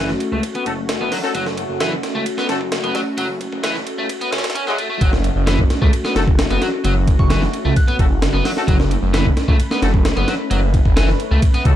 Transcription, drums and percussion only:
0.09 snare soft
0.20 ride medium
0.43 kick loud
0.43 ride medium
0.55 ride soft
0.66 kick medium
0.66 ride medium
0.89 snare loud
0.89 ride medium
1.12 snare soft
1.12 open hi-hat medium
1.24 snare soft
1.35 kick loud
1.35 ride medium
1.46 snare soft
1.57 ride medium
1.80 snare loud
1.80 ride medium
1.92 kick medium
2.03 snare medium
2.03 ride medium
2.15 kick medium
2.26 ride medium
2.38 snare medium
2.49 snare medium
2.49 ride medium
2.61 kick loud
2.72 snare loud
2.72 ride medium
2.84 ride soft
2.95 snare medium
2.95 ride medium
3.18 ride medium
3.41 kick medium
3.41 ride medium
3.52 kick medium
3.64 snare loud
3.64 ride medium
3.75 snare soft
3.87 ride medium
4.09 kick loud
4.09 ride medium
4.21 ride soft
4.33 snare medium
4.33 ride medium
4.38 snare medium
4.38 ride medium
4.44 snare loud
4.44 ride medium
4.50 snare medium
4.50 ride medium
4.55 kick loud
4.55 ride medium
4.67 snare soft
4.78 ride medium
5.01 kick loud
5.01 ride medium
5.13 snare soft
5.24 ride medium
5.47 snare loud
5.47 ride medium
5.59 kick loud
5.70 snare soft
5.70 ride medium
5.82 kick loud
5.93 ride medium
6.05 snare medium
6.16 snare medium
6.16 ride medium
6.28 kick loud
6.39 snare loud
6.39 ride medium
6.50 ride soft
6.62 snare medium
6.62 ride medium
6.84 ride medium
7.08 kick medium
7.08 ride medium
7.19 kick medium
7.30 snare loud
7.30 ride medium
7.42 snare soft
7.53 ride medium
7.76 kick loud
7.76 ride medium
7.88 ride soft
7.99 kick loud
7.99 ride medium
8.22 snare loud
8.22 ride medium
8.45 snare soft
8.45 open hi-hat medium
8.57 snare medium
8.68 kick loud
8.68 ride medium
8.80 snare soft
8.91 ride medium
9.14 snare loud
9.14 ride medium
9.25 kick medium
9.37 snare medium
9.37 ride medium
9.48 kick loud
9.60 ride medium
9.71 snare medium
9.82 snare medium
9.82 ride medium
9.94 kick loud
10.05 snare loud
10.05 ride medium
10.17 ride soft
10.28 snare medium
10.28 ride medium
10.51 ride medium
10.74 kick loud
10.74 ride medium
10.85 kick medium
10.97 snare loud
10.97 ride medium
11.09 snare soft
11.20 ride medium
11.42 kick loud
11.42 ride medium
11.54 ride soft
11.65 kick loud
11.65 ride medium

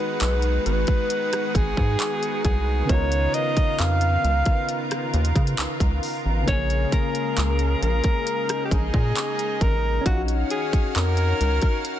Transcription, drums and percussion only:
0.21 clap loud
0.21 closed hi-hat medium
0.42 closed hi-hat soft
0.66 closed hi-hat soft
0.87 kick loud
0.87 closed hi-hat soft
1.10 closed hi-hat medium
1.33 cross-stick medium
1.33 closed hi-hat medium
1.55 kick medium
1.55 closed hi-hat medium
1.77 kick loud
2.00 clap loud
2.00 closed hi-hat medium
2.23 closed hi-hat medium
2.45 kick medium
2.45 closed hi-hat medium
2.89 kick loud
2.89 closed hi-hat medium
3.12 closed hi-hat medium
3.34 closed hi-hat medium
3.57 kick loud
3.57 closed hi-hat medium
3.79 clap loud
3.79 closed hi-hat medium
4.01 closed hi-hat soft
4.25 closed hi-hat soft
4.46 kick medium
4.46 closed hi-hat soft
4.69 closed hi-hat medium
4.91 cross-stick medium
4.91 closed hi-hat medium
5.14 closed hi-hat medium
5.25 closed hi-hat medium
5.36 kick loud
5.36 closed hi-hat medium
5.47 closed hi-hat medium
5.58 clap loud
5.58 closed hi-hat medium
5.80 kick loud
5.80 closed hi-hat medium
6.03 open hi-hat medium
6.48 kick loud
6.48 closed hi-hat medium
6.70 closed hi-hat medium
6.92 kick loud
6.92 closed hi-hat medium
7.15 closed hi-hat medium
7.37 clap loud
7.37 closed hi-hat medium
7.59 closed hi-hat soft
7.83 closed hi-hat soft
8.04 kick loud
8.04 closed hi-hat soft
8.27 closed hi-hat medium
8.49 cross-stick medium
8.49 closed hi-hat medium
8.71 kick loud
8.71 closed hi-hat medium
8.94 kick loud
9.16 clap loud
9.16 closed hi-hat medium
9.39 closed hi-hat medium
9.61 kick medium
9.61 closed hi-hat medium
10.06 kick loud
10.06 closed hi-hat medium
10.28 closed hi-hat medium
10.50 closed hi-hat medium
10.73 kick loud
10.73 closed hi-hat medium
10.95 clap loud
10.95 closed hi-hat medium
11.17 closed hi-hat soft
11.41 closed hi-hat soft
11.62 kick loud
11.62 closed hi-hat medium
11.85 closed hi-hat medium

